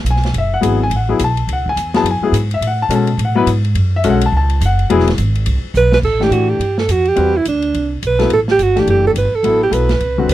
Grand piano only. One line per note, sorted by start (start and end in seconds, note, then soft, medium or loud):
0.10 0.35 G#5 medium
0.38 0.53 E5 medium
0.54 0.79 F#5 medium
0.61 0.78 F#3 medium
0.61 0.77 B3 medium
0.61 0.78 E4 medium
0.61 0.78 G#4 medium
0.83 0.93 G#5 medium
0.96 1.20 F#5 medium
1.09 1.19 F#3 medium
1.09 1.19 B3 medium
1.09 1.19 E4 medium
1.09 1.19 G#4 medium
1.24 1.49 A5 medium
1.53 1.67 F#5 medium
1.69 1.94 G#5 medium
1.94 2.04 F#3 medium
1.94 2.04 B3 medium
1.94 2.04 E4 medium
1.94 2.05 G#4 medium
1.94 2.06 A5 loud
2.11 2.35 G#5 medium
2.23 2.33 F#3 medium
2.23 2.33 B3 medium
2.23 2.33 E4 medium
2.23 2.33 G#4 medium
2.54 2.63 E5 medium
2.67 2.82 F#5 medium
2.82 2.92 A5 medium
2.90 3.06 G#3 medium
2.90 3.06 C#4 medium
2.90 3.06 F#4 medium
2.90 3.06 A4 medium
2.95 3.20 A5 medium
3.25 3.49 F#5 medium
3.35 3.46 F#3 medium
3.35 3.46 B3 medium
3.35 3.46 E4 medium
3.35 3.47 B4 loud
3.96 4.06 E5 medium
4.04 4.20 G#3 medium
4.04 4.20 C#4 medium
4.04 4.20 F#4 medium
4.04 4.20 A4 medium
4.10 4.24 F#5 medium
4.26 4.35 A5 medium
4.37 4.61 A5 medium
4.66 4.90 F#5 medium
4.90 5.05 F#3 loud
4.90 5.05 B3 medium
4.90 5.05 E4 medium
4.90 5.06 G#4 medium
6.20 6.57 E3 medium
6.20 6.58 A3 medium
6.20 6.58 D4 medium
6.20 6.58 G4 medium
7.16 7.32 G3 medium
7.16 7.32 C4 medium
7.16 7.32 F#4 medium
7.16 7.33 B4 medium
8.19 8.29 F#3 medium
8.19 8.29 B3 medium
8.19 8.29 E4 medium
8.19 8.29 A4 medium
8.76 9.13 E3 medium
8.76 9.13 A3 medium
8.76 9.14 D4 medium
8.76 9.13 G4 medium
9.43 9.59 F#3 medium
9.43 9.60 B3 medium
9.43 9.60 E4 medium
9.43 9.60 A4 medium
9.70 9.87 F#3 medium
9.70 9.87 B3 medium
9.70 9.87 E4 soft
9.70 9.87 A4 medium
10.18 10.34 D3 medium
10.18 10.34 G3 medium
10.18 10.34 C4 medium
10.18 10.34 F#4 medium